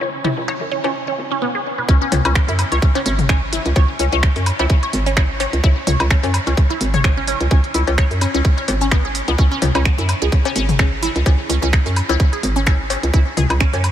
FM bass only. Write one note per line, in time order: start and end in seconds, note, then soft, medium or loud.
0.01 0.10 C#2 loud
0.25 0.34 C#2 loud
0.38 0.53 C#2 loud
0.61 0.77 F#2 medium
0.84 0.92 C#2 loud
1.18 1.42 G#1 loud
1.89 1.98 C#2 loud
2.12 2.21 C#2 loud
2.25 2.41 C#2 loud
2.49 2.64 F#2 medium
2.72 2.79 C#2 loud
3.06 3.59 G#1 loud
3.66 3.73 C#2 loud
3.76 3.85 C#2 loud
4.00 4.09 C#2 loud
4.13 4.28 C#2 loud
4.36 4.52 F#2 medium
4.59 4.67 C#2 loud
4.93 5.47 G#1 loud
5.53 5.60 C#2 loud
5.64 5.73 C#2 loud
5.87 5.96 C#2 loud
6.00 6.16 C#2 loud
6.24 6.39 F#2 medium
6.47 6.54 C#2 loud
6.81 7.34 G#1 loud
7.41 7.48 C#2 loud
7.51 7.60 C#2 loud
7.75 7.84 C#2 loud
7.88 8.03 C#2 loud
8.11 8.27 F#2 medium
8.35 8.42 C#2 loud
8.68 9.22 G#1 loud
9.28 9.35 C#2 loud
9.39 9.48 C#2 loud
9.62 9.71 C#2 loud
9.75 9.91 C#2 loud
9.98 10.14 F#2 medium
10.22 10.29 C#2 loud
10.56 11.09 G#1 loud
11.16 11.23 C#2 loud
11.26 11.35 C#2 loud
11.49 11.59 C#2 loud
11.63 11.78 C#2 loud
11.86 12.02 F#2 medium
12.09 12.17 C#2 loud
12.43 12.97 G#1 loud
13.03 13.10 C#2 loud
13.14 13.23 C#2 loud
13.37 13.46 C#2 loud
13.50 13.66 C#2 loud
13.73 13.89 F#2 medium